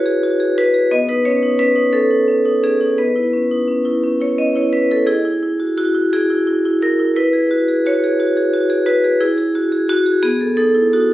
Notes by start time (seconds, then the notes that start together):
Already playing: E4 F#4 G#4 B4 C#5
0.06 G#4
0.23 F#4
0.40 G#4
0.58 F#4 B4
0.74 G#4
0.91 B3 D#5
1.09 D#4 B4
1.25 C#4 C#5
1.43 D#4
1.59 C#4 B4
1.76 D#4
1.93 C#4 A4
2.11 D#4
2.28 C#4
2.45 D#4
2.63 C#4 G#4
2.81 D#4
2.98 B3 B4
3.16 E4
3.33 C#4
3.51 D#4
3.68 C#4
3.85 E4
4.04 C#4
4.20 E4 C#5
4.38 C#4 D#5
4.55 E4 C#5
4.73 C#4 B4
4.91 E4 A4
5.07 E4 G#4
5.25 E4
5.43 E4
5.60 F#4
5.77 E4 F#4
5.95 E4
6.13 E4 G#4
6.30 E4
6.47 E4
6.65 E4
6.82 E4 A#4
6.99 E4
7.16 E4 B4
7.33 G#4
7.51 F#4
7.68 G#4
7.86 F#4 C#5
8.04 G#4
8.20 F#4
8.37 G#4
8.54 F#4
8.70 G#4
8.86 F#4 B4
9.04 G#4
9.21 E4 G#4
9.38 G#4
9.55 F#4
9.72 G#4
9.89 F#4
10.06 G#4
10.23 B3 G#4
10.41 A4
10.57 D#4 A4
10.74 E4
10.93 D#4 F#4